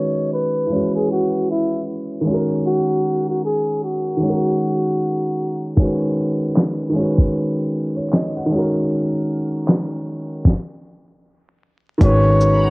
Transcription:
Already playing: felt piano D#3 G#3 C#4 F#4 B4 D#5, flugelhorn C#5
0.33 flugelhorn B4
0.67 felt piano E3 G#3
0.73 felt piano C#4 F#4
0.79 felt piano B4
0.95 flugelhorn G#4
1.11 flugelhorn F#4
1.51 flugelhorn E4
2.21 felt piano D#3 G#3
2.27 felt piano C#4 F#4
2.34 felt piano A#4
2.67 flugelhorn F#4
3.30 flugelhorn F#4
3.45 flugelhorn G#4
3.83 flugelhorn F#4
4.17 felt piano D#3 G#3
4.23 felt piano C#4 F#4
4.29 felt piano A#4
5.76 felt piano D#3 G#3 C#4, kick, closed hi-hat
5.82 felt piano F#4 B4
6.55 snare, clap, closed hi-hat
6.90 felt piano D#3 G#3
6.96 felt piano C#4 F#4
7.02 felt piano B4
7.18 kick
7.34 closed hi-hat
7.96 felt piano C#5
8.09 felt piano D#5, closed hi-hat
8.13 snare, clap
8.37 felt piano F#5
8.46 felt piano D#3 G#3
8.52 felt piano C#4 F#4
8.59 felt piano A#4
8.89 closed hi-hat
9.66 snare, clap, closed hi-hat
10.45 kick, snare
11.98 fingered electric bass G#1, felt piano D#3 G#3 C#4, ambient pad F#5 A#5 B5, kick, closed hi-hat
12.02 felt piano F#4 B4, flugelhorn C#5
12.41 shaker

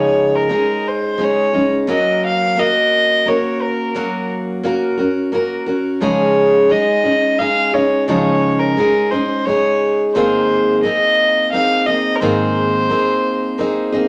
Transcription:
Already playing: steel-string acoustic guitar C#3 F3 G#3 C#4 D#4 G#4, fiddle C#5
0.35 fiddle A#4
0.49 steel-string acoustic guitar G#3 C#4 D#4 G#4
0.88 fiddle C5
1.18 steel-string acoustic guitar G#3 C#4 D#4 G#4
1.24 fiddle C#5
1.53 steel-string acoustic guitar G#3 C#4 D#4 G#4
1.87 steel-string acoustic guitar F#3 A#3 C#4 F#4 A#4
1.91 fiddle D#5
2.26 fiddle F5
2.56 steel-string acoustic guitar A#3 C#4 F#4 A#4, fiddle D#5
3.26 steel-string acoustic guitar A#3 C#4 F#4 A#4, fiddle C#5
3.62 fiddle A#4
3.95 steel-string acoustic guitar F#3 A#3 C#4 F#4 A#4
4.63 steel-string acoustic guitar A#3 C#4 F#4 A#4
4.98 steel-string acoustic guitar C#4 F#4 A#4
5.32 steel-string acoustic guitar A#3 C#4 F#4 A#4
5.66 steel-string acoustic guitar C#4 F#4 A#4
6.01 steel-string acoustic guitar C#3 F3 G#3 C#4 D#4 G#4, fiddle C#5
6.69 steel-string acoustic guitar G#3 C#4 D#4 G#4, fiddle D#5
7.04 steel-string acoustic guitar G#3 C#4 D#4 G#4
7.39 steel-string acoustic guitar G#3 C#4 D#4 G#4, fiddle F5
7.73 steel-string acoustic guitar G#3 C#4 D#4 G#4, fiddle C#5
8.08 steel-string acoustic guitar C#3 F3 G#3 C#4 D#4 G#4, fiddle C#5
8.59 fiddle A#4
8.77 steel-string acoustic guitar G#3 C#4 D#4 G#4
9.11 steel-string acoustic guitar G#3 C#4 D#4 G#4, fiddle C5
9.45 steel-string acoustic guitar G#3 C#4 D#4, fiddle C#5
9.49 steel-string acoustic guitar G#4
10.15 steel-string acoustic guitar G#2 D#3 A#3 C4 D#4 G#4, fiddle C5
10.83 steel-string acoustic guitar A#3 C4 D#4 G#4, fiddle D#5
11.52 steel-string acoustic guitar A#3 C4 D#4 G#4, fiddle F5
11.86 steel-string acoustic guitar A#3 C4 D#4 G#4, fiddle D#5
12.15 fiddle A#4
12.20 steel-string acoustic guitar G#2 D#3 A#3 C4 D#4 G#4, fiddle C5
12.90 steel-string acoustic guitar A#3 C4 D#4 G#4
13.58 steel-string acoustic guitar A#3 C4 D#4 G#4
13.92 steel-string acoustic guitar A#3 C4 D#4 G#4

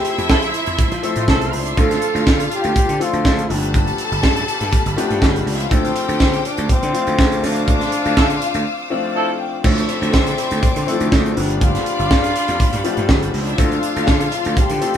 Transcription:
Already playing: grand piano F3 A3 C4 E4 A4, string section F3 E4 E5 A5 C6, trombone G4
0.05 closed hi-hat
0.18 slap bass F2, closed hi-hat
0.29 horn section F3 E4 A4, slap bass F3, kick, snare
0.42 closed hi-hat
0.54 closed hi-hat
0.66 slap bass F2, closed hi-hat
0.79 muted slap bass stroke, kick, closed hi-hat
0.92 slap bass F3, closed hi-hat
1.03 grand piano F3 A3 C4 E4 A4, closed hi-hat
1.16 slap bass A2, closed hi-hat
1.20 string section F3 F4
1.28 slap bass C2, horn section F3 E4 A4, string section G3 G4, kick, snare
1.37 string section A3 A4
1.41 string section B3 B4, closed hi-hat
1.53 slap bass C#2, string section C4 C5, open hi-hat
1.62 string section D4 D5
1.66 closed hi-hat
1.70 string section E4 E5
1.77 slap bass D2, grand piano E3 A3 C4 D4 A4, string section F4 D5 F5 A5, trombone A4, kick, closed hi-hat
1.83 grand piano F3
1.91 snare, closed hi-hat
2.02 closed hi-hat
2.15 slap bass D2, closed hi-hat
2.27 slap bass D3, kick, snare
2.40 closed hi-hat
2.46 trombone A4
2.52 trombone G4, closed hi-hat
2.64 slap bass D2, closed hi-hat
2.76 muted slap bass stroke, kick, closed hi-hat
2.89 slap bass D3, closed hi-hat
2.99 grand piano F3 A3 C4 D4 A4, trombone F4, closed hi-hat
3.13 slap bass D2, closed hi-hat
3.25 slap bass D2, kick, snare
3.39 closed hi-hat
3.49 slap bass G1, grand piano F3 A3 A#3 D4 G4, trombone D4, string section G4 A4 F5 A5 B5, open hi-hat
3.56 grand piano B3
3.63 closed hi-hat
3.74 kick, closed hi-hat
3.87 closed hi-hat
3.98 closed hi-hat
4.12 slap bass G1, closed hi-hat
4.23 slap bass G2, kick, snare
4.36 closed hi-hat
4.48 closed hi-hat
4.61 slap bass G2, closed hi-hat
4.73 kick, closed hi-hat
4.86 slap bass G1, closed hi-hat
4.96 grand piano F3 A3 B3 D4 G4, closed hi-hat
5.10 slap bass G2, closed hi-hat
5.22 slap bass G1, string section A3 A4, kick, snare
5.29 string section B3 B4
5.36 string section C4 C5, closed hi-hat
5.45 slap bass C#2, string section D4 D5, open hi-hat
5.53 string section E4 E5
5.60 string section F4 F5, closed hi-hat
5.69 slap bass D2, grand piano F3 A3 C4 D4 A4, trombone C4, string section G4 C5 G5 D6, kick, closed hi-hat
5.85 closed hi-hat
5.96 closed hi-hat
6.09 slap bass D2, closed hi-hat
6.20 slap bass D3, kick, snare
6.33 closed hi-hat
6.45 trombone D4, closed hi-hat
6.57 slap bass D2, closed hi-hat
6.69 trombone C4, muted slap bass stroke, kick, closed hi-hat
6.83 slap bass D3, closed hi-hat
6.93 grand piano F3 A3 C4 D4 F4, closed hi-hat
7.07 slap bass D2, closed hi-hat
7.19 slap bass D2, kick, snare
7.32 closed hi-hat
7.42 slap bass D2, grand piano F3 A3 C4 D4 F4, string section F4 F5 E6, open hi-hat
7.47 trombone D4
7.56 closed hi-hat
7.68 kick, closed hi-hat
7.81 snare, closed hi-hat
7.92 closed hi-hat
8.06 slap bass D2, closed hi-hat
8.17 slap bass D3, horn section F3 E4 A4, kick, snare
8.30 closed hi-hat
8.42 closed hi-hat
8.54 slap bass D2, closed hi-hat
8.90 grand piano F3 A3 C4 D4 F4 D5
9.15 horn section F3 E4 A4, grand piano F5
9.39 grand piano G5
9.64 slap bass D2, grand piano F3 A3 C4 D4 A4, trombone C4, string section E4 A4 D5 E5 C6 D6, kick, crash
9.78 closed hi-hat
9.89 closed hi-hat
10.02 slap bass D2, closed hi-hat
10.13 slap bass D3, kick, snare
10.27 closed hi-hat
10.38 closed hi-hat
10.51 slap bass D2, closed hi-hat
10.63 kick, closed hi-hat
10.76 slap bass D3, closed hi-hat
10.86 grand piano E3 A3 C4 D4 A4, closed hi-hat
10.92 grand piano F3
11.00 slap bass D2, closed hi-hat
11.12 slap bass D2, trombone D4, kick, snare
11.26 closed hi-hat
11.36 slap bass G1, grand piano F3 A3 B3 D4 G4, string section D4 G4 D5 F5 A5 B5, open hi-hat
11.50 closed hi-hat
11.61 trombone F4, kick, closed hi-hat
11.75 snare, closed hi-hat
11.86 closed hi-hat
11.99 slap bass G1, closed hi-hat
12.11 slap bass G2, kick, snare
12.24 closed hi-hat
12.36 closed hi-hat
12.48 slap bass F2, closed hi-hat
12.60 muted slap bass stroke, kick, closed hi-hat
12.73 slap bass G2, closed hi-hat
12.84 grand piano F3 A3 B3 D4 G4, closed hi-hat
12.97 slap bass G2, closed hi-hat
13.09 slap bass G1, string section G3 G4, kick, snare
13.17 string section A3 A4
13.23 string section B3 B4, closed hi-hat
13.34 slap bass C#2, string section C4 C5, open hi-hat
13.42 string section D4 D5
13.47 closed hi-hat
13.51 string section E4 E5
13.57 slap bass D2, grand piano F3 A3 C4 D4 A4, string section F3 F4 D5 F5 C6, kick, closed hi-hat
13.62 trombone D4
13.72 closed hi-hat
13.83 closed hi-hat
13.96 slap bass D2, closed hi-hat
14.07 slap bass D3, kick, snare
14.20 closed hi-hat
14.32 trombone F4, closed hi-hat
14.45 slap bass D2, closed hi-hat
14.57 trombone G4, kick, closed hi-hat
14.70 slap bass D3, closed hi-hat
14.81 grand piano F3 A3 C4 D4 A4, closed hi-hat
14.94 closed hi-hat

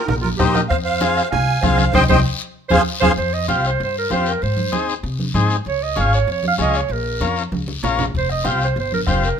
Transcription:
0.06 upright bass A#1, clarinet D#4, accordion A#4, bombo rim, high conga, low conga, long guiro
0.21 clarinet F4, accordion A#4, high conga
0.37 upright bass A#1, transistor combo organ A#3 D#4 G4, clarinet G4, accordion C5, bombo low, bombo rim, high conga, low conga, short guiro
0.54 clarinet A#4, accordion D#5, bombo rim, high conga, short guiro
0.69 upright bass F2, clarinet C5, accordion F5, bombo low, bombo rim, high conga, long guiro
0.85 clarinet C5, accordion F5
1.01 transistor combo organ C4 F4 G#4, bombo rim, high conga, short guiro
1.17 bombo rim, short guiro
1.30 upright bass C2, clarinet F5, accordion G#5, bombo rim, high conga, low conga, long guiro
1.61 upright bass C2, transistor combo organ C4 F4 G#4, clarinet C5, accordion F5, bombo low, bombo rim, high conga, short guiro
1.78 bombo rim, high conga, short guiro
1.93 upright bass C2, transistor combo organ C4 D#4 G4, accordion C5 D#5 G5, clarinet C5, bombo low, high conga, long guiro
2.09 upright bass C2, transistor combo organ C4 D#4 G4, clarinet C5, accordion C5 D#5 G5, bombo low, high conga, long guiro
2.69 upright bass F2, transistor combo organ C4 F4 G#4, clarinet C5, accordion C5, bombo low, high conga, long guiro
2.73 accordion G#4 F5
3.00 upright bass F2, transistor combo organ C4 F4 G#4, accordion G#4 C5 F5, clarinet C5, bombo low, high conga, long guiro
3.17 upright bass F2, clarinet C5, high conga, long guiro
3.34 clarinet D#5
3.48 upright bass C2, transistor combo organ C4 F4 G4, clarinet F5, high conga, short guiro
3.64 clarinet C5, short guiro
3.79 upright bass G2, high conga, long guiro
3.84 clarinet C5
3.98 clarinet A#4
4.10 upright bass F2, transistor combo organ C4 F4 G4, clarinet C5, high conga, short guiro
4.26 clarinet A#4, short guiro
4.42 upright bass G#2, clarinet C5, high conga, long guiro
4.57 high conga
4.72 upright bass D#2, transistor combo organ C4 D#4 G#4, high conga, short guiro
4.89 short guiro
5.03 upright bass C3, high conga, long guiro
5.19 high conga
5.34 upright bass G#2, transistor combo organ C4 D#4 G#4, high conga, short guiro
5.50 short guiro
5.65 upright bass C#2, clarinet C#5, high conga, long guiro
5.83 clarinet D#5
5.96 upright bass G#1, transistor combo organ C#4 F4 G#4, high conga, short guiro
6.00 clarinet F5
6.13 clarinet C#5, short guiro
6.27 upright bass F2, high conga, long guiro
6.32 clarinet C#5
6.43 high conga
6.48 clarinet F5
6.58 upright bass C#2, transistor combo organ C#4 F4 G#4, clarinet D#5, high conga, short guiro
6.74 clarinet C#5, short guiro
6.89 upright bass A#1, clarinet A#4, high conga, long guiro
7.20 upright bass F2, transistor combo organ C#4 F4 A#4, high conga, short guiro
7.36 short guiro
7.52 upright bass C#2, high conga, long guiro
7.68 high conga
7.83 upright bass A#1, transistor combo organ C#4 F4 A#4, low conga, short guiro
7.99 low conga, short guiro
8.14 upright bass F1, clarinet C5, bombo low, high conga, long guiro
8.29 clarinet D#5, bombo rim
8.44 upright bass C2, transistor combo organ C4 F4 G4, clarinet F5, bombo rim, high conga, short guiro
8.61 clarinet C5, short guiro
8.76 upright bass G1, high conga, long guiro
8.80 clarinet C5
8.92 clarinet A#4, high conga
9.07 upright bass F1, transistor combo organ C4 F4 G4, clarinet C5, bombo low, bombo rim, high conga, short guiro
9.24 clarinet A#4, short guiro

